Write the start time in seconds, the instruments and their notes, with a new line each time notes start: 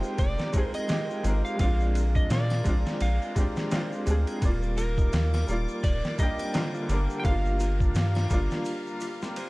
Already playing: upright piano G#3 C4 D#4 G4, harp C4 D#4 F4 F5, string section D#4 F4, synth texture A#4, electric slide guitar C5
0.03 shaker
0.18 analog synth bass F1, electric slide guitar D5, kick, ride, shaker
0.38 snare, shaker
0.53 upright piano G#3 C4 D#4, harp F4, kick, ride, shaker
0.58 upright piano G#4
0.74 harp C4, electric slide guitar D#5, ride, triangle, shaker
0.88 upright piano G#3 C4 D#4, harp C5, snare, ride, shaker
0.92 upright piano G4
1.09 harp F4, shaker
1.23 analog synth bass G#1, upright piano G#3 C4 D#4, harp F4, ride, shaker
1.28 upright piano A#4
1.45 electric slide guitar F5, shaker
1.56 upright piano G#3 C4, harp F4, string section G#4 D5 A#5, kick, ride
1.60 analog synth bass A#1, upright piano D4, electric slide guitar F5, shaker
1.65 upright piano F4
1.80 shaker
1.95 harp F4, ride, shaker
2.15 harp D4, electric slide guitar D#5, kick, shaker
2.30 analog synth bass A#2, electric slide guitar D5, harp F5, snare, ride, shaker
2.50 harp F4, snare, triangle, shaker
2.64 analog synth bass A#1, upright piano G#3 C4 D4, kick, ride, shaker
2.69 upright piano F4
2.86 snare, shaker
3.01 analog synth bass A#1, electric slide guitar F5, ride, shaker
3.22 shaker
3.35 upright piano G#3 C4 D4, harp F4, kick, ride, shaker
3.40 upright piano G4
3.56 harp C4, snare, shaker
3.71 upright piano G#3 C4 D4, harp C5, snare, ride, shaker
3.76 upright piano F4
3.92 harp F4, shaker
4.06 analog synth bass D2, upright piano G#3 C4 D4, harp F4, ride, shaker
4.11 upright piano G#4
4.27 ride, triangle, shaker
4.38 analog synth bass D#1, upright piano G3 A#3, harp F4, string section G4 D6, kick, ride
4.43 upright piano D5, shaker
4.48 upright piano F4
4.63 shaker
4.78 harp F4, electric slide guitar A#4, ride, shaker
4.98 harp D#4, kick, shaker
5.12 analog synth bass D#2, harp F5, snare, ride, shaker
5.33 harp F4, snare, triangle, shaker
5.47 analog synth bass D#1, upright piano G3 A#3 D5, shaker
5.52 upright piano F4
5.68 shaker
5.84 analog synth bass D#1, electric slide guitar D5, kick, ride, shaker
6.04 snare, shaker
6.18 upright piano G3 A#3 D4, harp F4, electric slide guitar D#5, kick, ride, shaker
6.23 upright piano G4
6.39 harp C4, ride, triangle, shaker
6.53 upright piano D3 G3 A#3, harp C5, snare, ride, shaker
6.58 upright piano F4
6.74 harp F4, shaker
6.88 analog synth bass G1, upright piano G3 A#3 D4, harp F4, ride, shaker
6.93 upright piano A#4
7.10 shaker
7.20 upright piano G3, electric slide guitar G5
7.24 analog synth bass G1, upright piano A#3 D4, harp F4, string section F5 A#5, electric slide guitar F5, kick, ride, shaker
7.31 upright piano F4
7.45 shaker
7.60 harp F4, ride, shaker
7.80 harp D4, kick, shaker
7.95 analog synth bass G2, harp F5, snare, ride, shaker
8.15 harp F4, snare, triangle, shaker
8.29 analog synth bass G1, upright piano G3 A#3 D4, kick, ride, shaker
8.34 upright piano F4
8.51 snare, shaker
8.65 ride, shaker
8.86 shaker
9.01 harp F4, ride, shaker
9.22 harp C4, snare, shaker
9.36 harp C5, ride, shaker